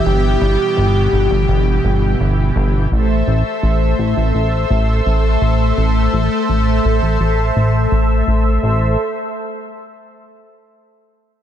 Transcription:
<<
  \new Staff \with { instrumentName = "Analog synth pad" } { \time 4/4 \key a \minor \tempo 4 = 84 <b, e g'>1 | <a a' c'' e''>1~ | <a a' c'' e''>1 | <a a' c'' e''>8 r2. r8 | }
  \new Staff \with { instrumentName = "Soft synth lead" } { \time 4/4 \key a \minor g'2. r4 | r1 | r1 | r1 | }
  \new Staff \with { instrumentName = "Analog synth bass" } { \clef bass \time 4/4 \key a \minor g,,8 g,,16 r16 g,,8 g,,16 g,,16 g,,8 g,,8 g,,8 g,,8 | a,,8 a,,16 r16 a,,8 a,,16 a,,16 a,,8 a,,8 a,,8 a,,8 | a,,8 a,,16 r16 a,,8 a,,16 a,,16 a,,8 a,,8 a,,8 a,,8 | a,,8 r2. r8 | }
>>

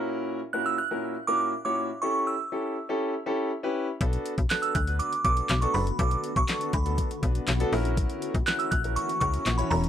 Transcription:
<<
  \new Staff \with { instrumentName = "Synth bell" } { \time 4/4 \key b \minor \tempo 4 = 121 r4 fis'''16 e'''16 fis'''4 d'''8. d'''8. | cis'''8 e'''4. r2 | r4 fis'''16 e'''16 fis'''8 d'''8 d'''8. cis'''16 b''8 | d'''8. cis'''8. b''2 r8 |
r4 fis'''16 e'''16 fis'''8 cis'''8 cis'''8. b''16 ais''8 | }
  \new Staff \with { instrumentName = "Grand piano" } { \time 4/4 \key b \minor <ais, cis' e' fis' ais'>8. r16 <ais, cis' e' fis' ais'>8 r16 <ais, cis' e' fis' ais'>8 r16 <ais, cis' e' fis' ais'>8 r16 <ais, cis' e' fis' cis''>8 r16 | <cis' e' g' a'>8 r8 <cis' e' g' a'>8 r16 <cis' e' g' a'>8 r16 <cis' e' g' a'>8 r16 <cis' e' g' b'>8 r16 | <b d' fis' a'>8 r8 <b d' fis' a'>8 r16 <b d' fis' b'>8 r16 <b d' fis' a'>8 r16 <b d' fis' a'>8 r16 | <b d' fis' a'>8 r8 <b d' fis' a'>8 r16 <b d' fis' a'>8 r16 <b d' fis' b'>8 r16 <b d' fis' a'>16 <cis' e' fis' ais'>8~ |
<cis' e' fis' ais'>8. r16 <cis' e' fis' ais'>8 r16 <cis' e' fis' ais'>8 r16 <cis' e' fis' ais'>8 r16 <cis' e' fis' cis''>8 r16 | }
  \new Staff \with { instrumentName = "Ambient pad" } { \time 4/4 \key b \minor << { r1 | r1 | fis'1~ | fis'1~ |
fis'1 | } \\ { r1 | r1 | <d a b>1~ | <d a b>2.~ <d a b>8 <e ais cis'>8~ |
<e ais cis'>1 | } >> }
  \new Staff \with { instrumentName = "FM bass" } { \clef bass \time 4/4 \key b \minor r1 | r1 | b,,8 r16 b,,16 r8 d,8. r16 b,,8 b,,8 fis,,8 | b,,8 r16 b,,16 r8 d,8. r16 b,,8 b,,8 ais,,8~ |
ais,,8 r16 ais,,16 r8 ais,,8. r16 cis,8 ais,,8 e,,8 | }
  \new DrumStaff \with { instrumentName = "Drums" } \drummode { \time 4/4 r4 r4 r4 r4 | r4 r4 r4 r4 | <hh bd>16 hh16 hh16 <hh bd>16 <hc hh sn>16 hh16 <hh bd>16 hh16 hh16 hh16 <hh bd>16 hh16 <hc hh sn>16 hh16 hho16 hh16 | <hh bd>16 hh16 hh16 <hh bd>16 <hc hh sn>16 hh16 <hh bd>16 hh16 <hh bd>16 hh16 <hh bd>16 hh16 <hc hh sn>16 hh16 hho16 hh16 |
<hh bd>16 hh16 hh16 <hh bd>16 <hc hh sn>16 hh16 <hh bd>16 hh16 hh16 hh16 <hh bd>16 hh16 <hc hh sn>16 hh16 hho16 hh16 | }
>>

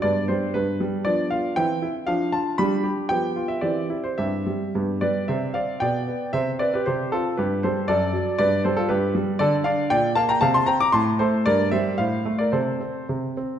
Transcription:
<<
  \new Staff \with { instrumentName = "Grand piano" } { \time 2/4 \key c \major \tempo 4 = 116 << { d''8 c''8 b'8 r8 | d''8 f''8 g''4 | f''8 a''8 b''4 | g''8. e''16 d''8. c''16 |
e''4. <b' d''>8 | <c'' e''>8 <d'' f''>8 <d'' g''>4 | <c'' e''>8 <b' d''>16 <g' b'>16 <g' c''>8 <f' a'>8 | <g' b'>8 <a' c''>8 <a' d''>4 |
<b' d''>8 <a' c''>16 <f' a'>16 <g' b'>8 r8 | \key a \phrygian <a' d''>8 <d'' f''>8 <d'' g''>8 <f'' a''>16 <g'' bes''>16 | <f'' a''>16 <a'' c'''>16 <g'' bes''>16 <bes'' d'''>16 <a'' c'''>8 <a' c''>8 | <bes' d''>8 <c'' e''>8 <c'' f''>8. <bes' d''>16 |
<a' c''>4 r4 | } \\ { <b d'>2 | <b d'>4 <c' e'>4 | d'4 <d' g'>4 | <b g'>4 <c' g'>4 |
<c' g'>4 <b g'>4 | r2 | r2 | r2 |
r2 | r2 | r2 | r2 |
r2 | } >> }
  \new Staff \with { instrumentName = "Grand piano" } { \clef bass \time 2/4 \key c \major g,8 g8 g,8 g8 | f8 f'8 e8 e'8 | f8 f'8 g8 g'8 | f8 f'8 e8 e'8 |
g,8 g8 g,8 g8 | c8 c'8 b,8 b8 | c8 c'8 c8 c'8 | g,8 g8 fis,8 fis8 |
g,8 g8 g,8 g8 | \key a \phrygian d8 d'8 bes,8 bes8 | c8 c'8 a,8 a8 | g,8 g8 a,8 a8 |
c8 c'8 c8 c'8 | }
>>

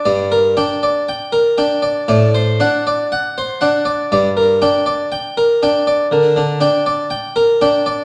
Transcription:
\new Staff \with { instrumentName = "Harpsichord" } { \time 4/4 \key g \minor \tempo 4 = 59 << { d''16 bes'16 g''16 d''16 g''16 bes'16 g''16 d''16 d''16 c''16 fis''16 d''16 fis''16 c''16 fis''16 d''16 | d''16 bes'16 g''16 d''16 g''16 bes'16 g''16 d''16 bes'16 d16 g''16 d''16 g''16 bes'16 g''16 d''16 | } \\ { g,8 d'8 r8 d'8 a,8 d'8 r8 d'8 | g,8 d'8 r8 d'8 d8 d'8 r8 d'8 | } >> }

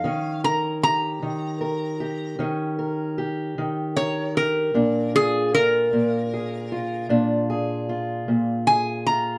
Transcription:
<<
  \new Staff \with { instrumentName = "Resonator guitar played with a steel bar" } { \time 12/8 \key ees \major \tempo 4. = 51 f''8 bes''8 bes''2 r2 des''8 bes'8~ | bes'8 aes'8 bes'2 r2 aes''8 bes''8 | }
  \new Staff \with { instrumentName = "Steel-string acoustic guitar" } { \time 12/8 \key ees \major << { des'8 bes'8 g'4 bes'8 g'8 des'8 bes'8 g'4 bes'8 g'8 | d'8 f'8 f'4 aes'8 f'8 d'8 aes'8 f'4 aes'8 f'8 | } \\ { ees4. ees4. ees4. ees4. | bes,4. bes,4. bes,4. bes,4. | } >> }
>>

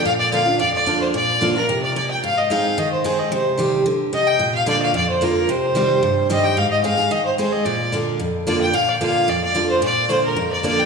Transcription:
<<
  \new Staff \with { instrumentName = "Fiddle" } { \time 4/4 \key bes \mixolydian \tempo 4 = 221 f''8 d''8 f''4 d''8 d''4 c''8 | d''4. bes'4 d''8 d''8 g''8 | f''8 ees''8 f''4 ees''8 c''8 c''8 ees''8 | c''4 r2 ees''8 g''8~ |
g''8 f''8 d''8 f''8 d''8 c''8 bes'8 bes'8 | c''2. ees''8 g''8 | f''8 ees''8 f''4 ees''8 c''8 c''8 ees''8 | d''4 r2 d''8 g''8 |
f''8 d''8 f''4 d''8 d''4 c''8 | d''4 c''8 bes'4 d''8 d''8 g''8 | }
  \new Staff \with { instrumentName = "Steel-string acoustic guitar" } { \time 4/4 \key bes \mixolydian << { r4 <d bes d' f'>8 <d' f'>8 r4 <d bes d' f'>4 | r4 <d bes d' f'>8 <d' f'>8 r2 | r4 <aes c' ees' aes'>4 r4 <aes c' ees' aes'>4 | r4 <ees g c' g'>4 r2 |
r4 <d bes d' f'>4 r4 <d bes d' f'>4 | r4 <ees g c' g'>4 r4 <ees g c' g'>4 | r4 <aes c' ees' aes'>8 <ees' aes'>8 r4 <aes c' ees' aes'>4 | r4 <d bes d' f'>4 r4 <d bes d' f'>4 |
r4 <d bes d' f'>4 r4 <d bes d' f'>4 | r4 <d bes d' f'>4 r4 <d bes d' f'>4 | } \\ { bes,2 f,2 | bes,2 c4 bes,4 | aes,2 ees2 | c2 d4 c4 |
bes,2 f,2 | c2 g,2 | aes,2 ees2 | bes,2 f,2 |
bes,2 f,2 | bes,2 f,2 | } >> }
>>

